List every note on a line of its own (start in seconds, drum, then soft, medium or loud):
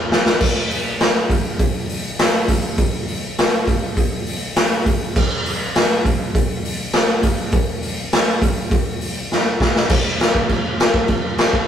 0.12 snare loud
0.26 snare loud
0.41 kick loud
0.41 crash loud
0.71 open hi-hat medium
1.00 snare loud
1.00 open hi-hat soft
1.30 kick medium
1.30 open hi-hat medium
1.59 kick loud
1.59 open hi-hat medium
1.89 open hi-hat medium
2.19 snare loud
2.19 open hi-hat medium
2.48 kick medium
2.48 open hi-hat medium
2.78 kick loud
2.78 open hi-hat medium
3.08 open hi-hat medium
3.38 snare loud
3.38 open hi-hat medium
3.67 kick medium
3.67 open hi-hat medium
3.97 kick loud
3.97 open hi-hat medium
4.27 open hi-hat medium
4.56 snare loud
4.56 open hi-hat medium
4.86 kick medium
4.86 open hi-hat medium
5.16 kick loud
5.16 crash medium
5.46 open hi-hat medium
5.75 snare loud
5.75 open hi-hat medium
6.05 kick medium
6.05 open hi-hat medium
6.35 kick loud
6.35 open hi-hat medium
6.65 open hi-hat medium
6.93 snare loud
6.93 open hi-hat medium
7.23 kick medium
7.23 open hi-hat medium
7.52 kick loud
7.52 open hi-hat medium
7.82 open hi-hat medium
8.12 snare loud
8.12 open hi-hat medium
8.42 kick medium
8.42 open hi-hat medium
8.71 kick loud
8.71 open hi-hat medium
9.01 open hi-hat medium
9.32 snare medium
9.60 kick medium
9.60 snare loud
9.76 snare medium
9.90 kick loud
9.90 crash loud
9.90 crash medium
10.20 snare loud
10.20 crash medium
10.35 kick medium
10.49 kick loud
10.49 crash medium
10.80 snare loud
10.80 crash medium
10.94 kick loud
11.08 kick loud
11.08 crash medium
11.38 snare loud
11.38 crash medium
11.53 kick medium